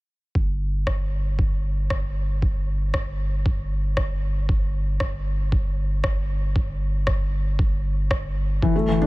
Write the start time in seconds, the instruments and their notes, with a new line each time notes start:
0.35 analog synth bass G1, kick
0.87 kick, cross-stick
1.39 kick
1.90 kick, cross-stick
2.42 kick
2.94 kick, cross-stick
3.46 kick
3.97 kick, cross-stick
4.49 kick
5.00 kick, cross-stick
5.52 kick
6.04 kick, cross-stick
6.56 kick
7.07 kick, cross-stick
7.59 kick
8.11 kick, cross-stick
8.62 analog synth bass G1, felt piano E3, ambient pad G3, kick
8.76 felt piano A3
8.88 felt piano E3, ambient pad D4
9.01 felt piano D4